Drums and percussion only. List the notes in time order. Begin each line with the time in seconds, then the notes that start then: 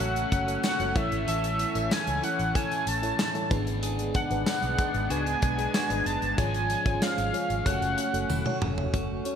0.00 closed hi-hat
0.16 closed hi-hat
0.32 kick, closed hi-hat
0.48 closed hi-hat
0.63 snare, tambourine
0.80 closed hi-hat
0.96 kick, closed hi-hat
1.12 closed hi-hat
1.28 closed hi-hat
1.44 closed hi-hat
1.59 closed hi-hat
1.76 closed hi-hat
1.91 snare, tambourine
2.07 closed hi-hat
2.24 closed hi-hat
2.39 closed hi-hat
2.55 kick, closed hi-hat
2.72 closed hi-hat
2.87 closed hi-hat
3.03 closed hi-hat
3.19 snare, tambourine
3.35 closed hi-hat
3.51 kick, closed hi-hat
3.67 closed hi-hat
3.83 closed hi-hat
3.99 closed hi-hat
4.14 kick, closed hi-hat
4.31 closed hi-hat
4.46 snare, tambourine
4.63 closed hi-hat
4.78 kick, closed hi-hat
4.94 closed hi-hat
5.10 closed hi-hat
5.27 closed hi-hat
5.42 kick, closed hi-hat
5.59 closed hi-hat
5.74 snare, tambourine
5.90 closed hi-hat
6.06 closed hi-hat
6.22 closed hi-hat
6.38 kick, closed hi-hat
6.54 closed hi-hat
6.70 closed hi-hat
6.86 kick, closed hi-hat
7.02 snare, tambourine
7.18 closed hi-hat
7.34 closed hi-hat
7.50 closed hi-hat
7.66 kick, closed hi-hat
7.82 closed hi-hat
7.98 closed hi-hat
8.14 closed hi-hat
8.30 high tom, tambourine
8.46 mid tom
8.62 mid tom
8.78 floor tom
8.94 kick, closed hi-hat
9.25 closed hi-hat